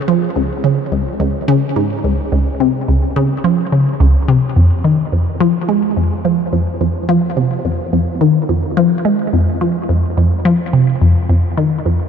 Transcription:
0.08 F3
0.36 C#2
0.64 C#3
0.92 C#2
1.20 C#2
1.48 C#3
1.76 G#2
2.04 C#2
2.32 C#2
2.60 C3
2.88 C#2
3.16 C#3
3.44 F3
3.72 C#3
4.00 C#2
4.28 C3
4.56 F2
4.84 D#3
5.12 F2
5.40 F3
5.69 G#3
5.97 F2
6.25 F3
6.53 F2
6.81 F2
7.09 F3
7.37 C3
7.65 F2
7.93 F2
8.21 D#3
8.49 F2
8.77 F3
9.05 G#3
9.33 F2
9.61 F3
9.89 F2
10.17 F2
10.45 F3
10.73 C3
11.02 F2
11.29 F2
11.58 D#3
11.85 F2

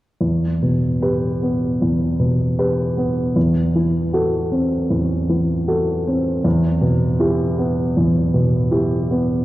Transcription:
0.21 E2
0.63 B2
1.02 G4 B4
1.42 B3
1.82 E2
2.19 B2
2.58 G4 B4
2.97 B3
3.36 E2
3.76 E3
4.13 F#4 A4
4.52 C4
4.90 E2
5.29 E3
5.68 F#4 A4
6.07 C4
6.44 E2
6.81 B2
7.19 E4 G4
7.58 B3
7.97 E2
8.34 B2
8.71 E4 G4
9.11 B3

